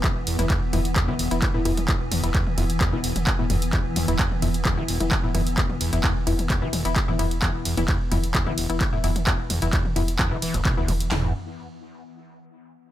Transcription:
<<
  \new Staff \with { instrumentName = "Synth stab" } { \time 4/4 \key c \major \tempo 4 = 130 <e b e'>8. <e b e'>16 r8 <e b e'>16 r8 <e b e'>8 <e b e'>16 r16 <e b e'>16 <e b e'>8 | <e b e'>8. <e b e'>16 r8 <e b e'>16 r8 <e b e'>8 r8 <e b e'>16 r8 | <e b e'>8. <e b e'>16 r8 <e b e'>16 r8 <e b e'>8 <e b e'>16 r16 <e b e'>16 <e b e'>8 | <e b e'>8. <e b e'>16 r8 <e b e'>16 r8 <e b e'>8 <e b e'>16 r16 <e b e'>16 <e b e'>8 |
<e b e'>8. <e b e'>16 r8 <e b e'>16 r8 <e b e'>8 <e b e'>16 r16 <e b e'>16 <e b e'>8 | <e b e'>8. <e b e'>16 r8 <e b e'>16 r8 <e b e'>8 r8 <e b e'>16 r8 | <e b e'>8 r2. r8 | }
  \new Staff \with { instrumentName = "Synth drone" } { \clef bass \time 4/4 \key c \major <e b>1~ | <e b>1~ | <e b>1~ | <e b>1~ |
<e b>1~ | <e b>1 | r1 | }
  \new Staff \with { instrumentName = "Acid bass" } { \clef bass \time 4/4 \key c \major e,16 r16 e,16 e,16 e,16 r16 f,16 r16 e,16 e16 e,,16 r8 a,16 f,16 r16 | e,16 r16 e,16 e,16 e,16 r16 f,16 r16 e,16 e16 e,,16 r8 a,16 f,16 r16 | e,16 r16 e,16 e,16 e,16 r16 f,16 r16 e,16 e16 e,,16 r8 a,16 f,16 r16 | e,16 r16 e,16 e,16 e,16 r16 f,16 r16 e,16 e16 e,,16 r8 a,16 f,16 r16 |
e,16 r16 e,16 e,16 e,16 r16 f,16 r16 e,16 e16 e,,16 r8 a,16 f,16 r16 | e,16 r16 e,16 e,16 e,16 r16 f,16 r16 e,16 e16 e16 e,,16 b,16 d,16 e16 r16 | e,8 r2. r8 | }
  \new Staff \with { instrumentName = "Sub bass" } { \clef bass \time 4/4 \key c \major r16 e,,16 r16 e,,16 r8 e,,16 e,,16 r16 e,,16 r16 e,,16 r8 e,,16 e,,16 | r16 e,,16 r16 e,,16 r8 e,,16 e,,16 r16 e,,16 r16 e,,16 r8 e,,16 e,,16 | r16 e,,16 r16 e,,16 r8 e,,16 e,,16 r16 e,,16 r16 e,,16 r8 e,,16 e,,16 | r16 e,,16 r16 e,,16 r8 e,,16 e,,16 r16 e,,16 r16 e,,16 r8 e,,16 e,,16 |
r16 e,,16 r16 e,,16 r8 e,,16 e,,16 r16 e,,16 r16 e,,16 r8 e,,16 e,,16 | r16 e,,16 r16 e,,16 r8 e,,16 e,,16 r16 e,,16 r16 e,,16 r8 e,,16 e,,16 | e,,8 r2. r8 | }
  \new DrumStaff \with { instrumentName = "Drums" } \drummode { \time 4/4 <hc hh bd toml>8 <hho cymr>16 <hh toml>16 <hc hh bd>8 <hho cymr toml>16 hh16 <hc hh bd>16 toml16 <hho cymr>16 hh16 <hc hh bd toml>8 <hho cymr>16 <hh toml>16 | <hc hh bd>8 <hho cymr toml>16 hh16 <hc hh bd>16 toml16 <hho cymr>16 hh16 <hc hh bd toml>8 <hho cymr>16 <hh toml>16 <hc hh bd>8 <hho cymr toml>16 hh16 | <hc hh bd>8 <hho cymr toml>16 hh16 <hc hh bd>16 toml16 <hho cymr>16 hh16 <hc hh bd toml>8 <hho cymr>16 <hh toml>16 <hc hh bd>8 <hho cymr toml>16 hh16 | <hc hh bd>16 toml16 <hho cymr>16 hh16 <hc hh bd toml>8 <hho cymr>16 <hh toml>16 <hc hh bd>8 <hho cymr toml>16 hh16 <hc hh bd>16 toml16 <hho cymr>16 hh16 |
<hc hh bd toml>8 <hho cymr>16 <hh toml>16 <hc hh bd>8 <hho cymr toml>16 hh16 <hc hh bd>16 toml16 <hho cymr>16 hh16 <hc hh bd toml>8 <hho cymr>16 <hh toml>16 | <hc hh bd>8 <hho cymr toml>16 hh16 <hc hh bd>16 toml16 <hho cymr>16 hh16 <hc hh bd toml>8 <hho cymr>16 <hh toml>16 <hc hh bd>8 <hho cymr toml>16 hh16 | <hc sn tomfh>4 r4 r4 r4 | }
>>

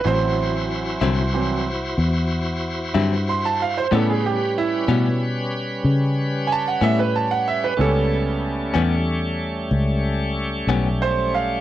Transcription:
<<
  \new Staff \with { instrumentName = "Upright piano" } { \time 12/8 \key a \dorian \tempo 4. = 62 c''2. r2 c'''16 a''16 f''16 c''16 | a'16 gis'16 g'8 e'4 r2 <gis'' a''>16 fis''16 e''16 b'16 a''16 fis''16 e''16 b'16 | <cis' a'>2. r2 c''8 f''8 | }
  \new Staff \with { instrumentName = "Upright piano" } { \clef bass \time 12/8 \key a \dorian <e fis c'>2 <e fis c'>8 r2. r8 | <cis g b>8 r1 r4. | <cis g b>4. r1 r8 | }
  \new Staff \with { instrumentName = "Tonewheel organ" } { \time 12/8 \key a \dorian <e' fis' c''>1. | <g cis' b'>1. | <g a cis'>1. | }
  \new Staff \with { instrumentName = "Clean electric guitar" } { \time 12/8 \key a \dorian r4. <d fis c' e'>8 r2 r8 <d fis c' e'>8 r4 | <a, g b cis'>8 r4 <a, g b cis'>8 r2 r8 <a, g b cis'>8 r4 | r4. <a, g b cis'>8 r2 r8 <a, g b cis'>8 r4 | }
  \new Staff \with { instrumentName = "Fingered electric bass" } { \clef bass \time 12/8 \key a \dorian a,,4. c,4. e,4. g,4. | a,4. b,4. cis4. a,4. | cis,4. e,4. cis,4. b,,4. | }
>>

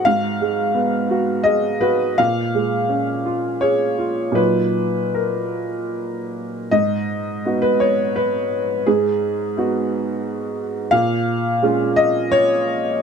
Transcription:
\new Staff \with { instrumentName = "Upright piano" } { \time 3/4 \key gis \dorian \tempo 4 = 84 << { eis''2 dis''8 b'8 | eis''2 cis''4 | b'4 ais'4 r4 | dis''4~ dis''16 b'16 cis''8 b'4 |
gis'2~ gis'8 r8 | eis''4. dis''8 cis''4 | } \\ { <gis, fis'>8 gis8 b8 fis'8 gis'8 fis'8 | ais,8 gis8 cis'8 eis'8 gis'8 eis'8 | <ais, fis dis' eis'>2. | gis,4 <b dis' fis'>2 |
gis,4 <b dis' fis'>2 | ais,4 <gis cis' eis'>2 | } >> }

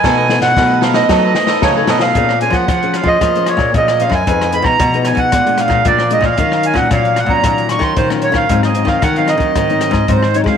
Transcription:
<<
  \new Staff \with { instrumentName = "Accordion" } { \time 4/4 \key bes \minor \tempo 4 = 114 aes''8. fis''8. f''16 dis''4~ dis''16 cis''8 dis''16 f''16~ | f''8 aes''16 ges''8. f''16 ees''8. des''8 ees''8 f''16 aes''16~ | aes''8 ces'''16 bes''8. aes''16 ges''8. f''8 d''8 ees''16 f''16~ | f''8 aes''16 ges''16 f''8 ges''16 bes''8. des'''16 c'''16 c''8 des''16 f''16~ |
f''16 ees''8 f''16 ges''16 f''16 ees''4. c''8 des''16 f''16 | }
  \new Staff \with { instrumentName = "Cavaquinho" } { \time 4/4 \key bes \minor <dis' a' b' dis''>16 <a' b' dis''>16 r8. <a' b' dis''>16 <dis' a' b' dis''>16 <a' b' dis''>16 <dis' a' b' dis''>16 <a' b' dis''>16 r16 <a' b' dis''>16 <dis' a' b' dis''>16 <a' b' dis''>16 <dis' a' b' dis''>16 <a' b' dis''>16 | r1 | r1 | r1 |
r1 | }
  \new Staff \with { instrumentName = "Nylon-string guitar" } { \time 4/4 \key bes \minor << { <dis' a' cis''>8 <dis' a' cis''>8 <dis' a' cis''>8 r16 <dis' a' cis''>16 <dis' a' cis''>8. <dis' a' cis''>8 <dis' a' cis''>8. | <des' aes' c''>16 r16 <des' aes' c''>8. <des' aes' c''>8 <des' aes' c''>8 <des' aes' c''>8. <des' aes' c''>8 <des' aes' c''>16 r16 | <ees' aes' ces''>8 <ees' aes' ces''>8 r16 <ees' aes' ces''>8. <aes d' f'>16 <aes d' f'>8. <aes d' f'>16 r16 <aes d' f'>16 r16 | <ges des' f'>8. <ges des' f'>16 <ges des' f'>8 r16 <ges des' f'>8. <ges des' f'>8. <ges des' f'>8. |
<ges c' ees'>8 <ges c' ees'>8 r16 <ges c' ees'>4 <ges c' ees'>8. <ges c' ees'>16 r16 <ges c' ees'>8 | } \\ { b4 fis4 b4 fis4 | bes4 f4 bes4 f4 | f4 f4 bes,4 f4 | ees4 bes,4 ees4 bes,4 |
aes,4 ees4 aes,4 ees4 | } >> }
  \new Staff \with { instrumentName = "Nylon-string guitar" } { \clef bass \time 4/4 \key bes \minor b,8. b,16 b,4 fis8 r8 cis8 b,8 | bes,8. f16 f8. f16 f8. bes,16 bes,8. ges,16 | f,8. ces16 ces8. ces16 bes,8. bes,16 bes,8. bes,16 | ees8. bes,16 bes,8. bes,16 bes,8. ees16 ees8. ees16 |
aes,8. ees16 ees8. ees16 ees8. aes,16 aes,8. aes16 | }
  \new DrumStaff \with { instrumentName = "Drums" } \drummode { \time 4/4 <bd sn>8 sn16 sn16 <bd sn>8 sn16 sn16 <bd sn>8 sn16 sn16 <bd sn>8 sn16 sn16 | <hh bd>16 ss16 hh16 <hh bd ss>16 <hh bd ss>16 hh16 <hh ss>16 bd16 <hh bd ss>16 hh16 <hh ss>16 <hh bd ss>16 <hh bd>16 <hh ss>16 hh16 <hh bd ss>16 | <hh bd>16 <hh ss>16 hh16 <bd ss>16 <hh bd ss>16 hh16 <hh ss>16 <hh bd>16 <hh bd ss>16 hh16 <hh ss>16 <hh bd ss>16 <hh bd>16 ss16 hh16 <bd ss>16 | <hh bd>16 ss16 hh16 <hh bd ss>16 <hh bd ss>16 hh16 <hh ss>16 bd16 <hh bd ss>16 hh16 <hh ss>16 <hh bd ss>16 <hh bd>16 <hh ss>16 hh16 <hh bd ss>16 |
<hh bd>16 <hh ss>16 hh16 <bd ss>16 <hh bd ss>16 hh16 <hh ss>16 <hh bd>16 <hh bd ss>16 hh16 <hh ss>16 <hh bd ss>16 <hh bd>16 ss16 hh16 <bd ss>16 | }
>>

